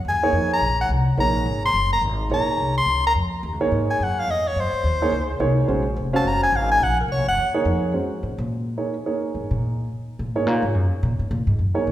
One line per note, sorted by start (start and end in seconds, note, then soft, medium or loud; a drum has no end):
0.05 0.32 D#2 medium
0.05 0.49 G#5 medium
0.23 0.60 A#3 medium
0.23 0.60 D#4 medium
0.23 0.60 G#4 medium
0.23 0.60 C#5 medium
0.32 0.60 F2 medium
0.53 0.79 A#5 medium
0.61 0.88 A#1 medium
0.81 0.90 F#5 medium
0.89 1.17 C2 medium
1.17 1.45 A#1 medium
1.17 1.60 A#3 medium
1.17 1.60 D#4 soft
1.17 1.60 G#4 medium
1.17 1.60 C#5 medium
1.17 1.62 A#5 medium
1.46 1.73 G#1 medium
1.66 1.91 C6 medium
1.74 2.01 F#1 medium
1.93 2.02 A#5 medium
2.01 2.29 G#1 medium
2.30 2.46 A#1 medium
2.30 2.73 A#3 soft
2.30 2.73 D#4 soft
2.30 2.73 G#4 medium
2.30 2.73 C#5 medium
2.30 2.75 A#5 medium
2.48 muted upright bass stroke soft
2.58 2.85 C2 medium
2.77 3.03 C6 loud
2.86 3.14 C#2 medium
3.07 3.13 A#5 medium
3.15 3.42 F2 medium
3.43 3.53 D#2 medium
3.53 3.61 C#2 soft
3.61 3.71 A#1 medium
3.61 3.98 A#3 medium
3.61 3.97 D#4 medium
3.61 3.97 G#4 medium
3.61 3.98 C#5 medium
3.72 3.99 G#2 medium
3.91 4.05 G#5 medium
4.00 4.27 F#2 medium
4.00 4.21 F#5 medium
4.19 4.32 F5 medium
4.27 4.55 F2 medium
4.27 4.49 D#5 medium
4.47 4.61 C#5 medium
4.56 4.72 F#2 medium
4.56 5.42 C5 medium
4.73 muted upright bass stroke soft
4.84 5.11 D#2 medium
5.02 5.11 A#3 medium
5.02 5.11 D#4 medium
5.02 5.11 G#4 medium
5.02 5.12 C#5 medium
5.11 5.39 C#2 medium
5.40 5.67 C2 medium
5.40 5.82 A#3 medium
5.40 5.82 D#4 medium
5.40 5.82 G#4 medium
5.40 5.82 C#5 medium
5.68 5.96 A#1 medium
5.68 5.84 G#3 medium
5.68 5.84 C#4 medium
5.68 5.84 F#4 medium
5.68 5.84 C5 medium
5.96 6.24 F1 medium
6.13 6.50 C#4 medium
6.13 6.50 F#4 medium
6.13 6.50 C5 medium
6.13 6.50 F5 medium
6.13 6.29 A5 medium
6.24 6.52 F#1 medium
6.24 6.43 A#5 medium
6.43 6.58 G#5 loud
6.52 6.79 G#1 medium
6.52 6.71 F5 medium
6.71 6.85 G#5 loud
6.80 7.08 A#1 medium
6.80 6.99 F#5 medium
7.00 7.13 A#4 medium
7.08 7.18 C2 medium
7.08 7.28 C#5 medium
7.18 7.27 A#1 medium
7.28 7.36 F#1 medium
7.28 7.53 F#5 medium
7.37 7.64 D#2 medium
7.54 7.91 A#3 medium
7.54 7.91 D#4 medium
7.54 7.91 G#4 medium
7.54 7.91 C#5 medium
7.65 7.92 F2 medium
7.94 8.09 G#3 soft
7.94 8.09 C#4 soft
7.94 8.09 F#4 soft
7.94 8.09 C5 soft
8.23 8.38 G#2 medium
8.38 8.75 A#2 medium
8.77 8.93 A#3 soft
8.77 8.93 D#4 soft
8.77 8.93 G#4 soft
8.77 8.93 C#5 soft
9.06 9.84 A#3 medium
9.06 9.84 D#4 soft
9.06 9.84 G#4 soft
9.06 9.84 C#5 soft
9.35 9.50 G#2 medium
9.51 9.87 A#2 medium
10.19 10.36 A#2 medium
10.35 10.47 G#2 medium
10.35 10.72 A#3 medium
10.35 10.72 D#4 soft
10.35 10.72 G#4 soft
10.35 10.72 C#5 medium
10.47 10.62 A#2 medium
10.62 10.75 G#2 medium
10.75 10.91 F#2 medium
11.03 11.19 A#2 medium
11.19 11.30 G#2 medium
11.31 11.46 A#2 medium
11.47 11.58 G#2 medium
11.59 11.75 F#2 medium
11.74 11.92 A#3 medium
11.74 11.92 D#4 medium
11.74 11.92 G#4 medium
11.74 11.92 C#5 medium
11.87 11.92 A#2 medium